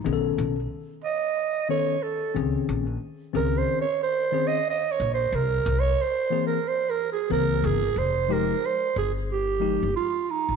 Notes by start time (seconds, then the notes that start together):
0.04 B1 D#3 B3 C#4 G#4
0.13 A4
0.38 B1
1.04 D#5
1.69 D#3 B3 C#4 A4 C#5
2.03 A4
2.34 C#2 D#3 C4 C#4 G#4
2.69 A#1
3.33 C#2 D#3 C4 C#4 G#4 A#4
3.58 C5
3.81 C#5
4.03 C5
4.32 D#3 C4 C#4 G#4
4.47 D#5
4.70 D#5
4.92 C#5
5.00 A#1
5.14 C5
5.32 C2 A#4
5.66 C2
5.80 C#5
6.02 C5
6.30 E3 A#3 C4 G#4
6.47 A#4
6.68 C5
6.90 A#4
7.12 G#4
7.30 C#2 E3 A#3 C4 A#4
7.64 G1 G#4
7.96 F1 C5
8.28 F3 G#3 D#4 G4 A#4
8.66 C5
8.96 G1 G#4
9.31 G4
9.60 F3 G#3 D#4 G4
9.83 G1
9.96 F4
10.30 D#4
10.49 G#1